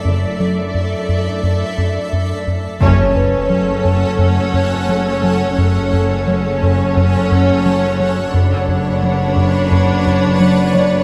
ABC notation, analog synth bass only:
X:1
M:4/4
L:1/8
Q:1/4=87
K:F#m
V:1 name="Analog synth bass" clef=bass
F,, F, F,, F,, F,, F,, F,, F,, | F,, F,, F, F,, F,, F,, F, F, | F,, F,, F, F,, F,, F,, F, F, | F,, F,, F, F,, F,, F,, F, F, |]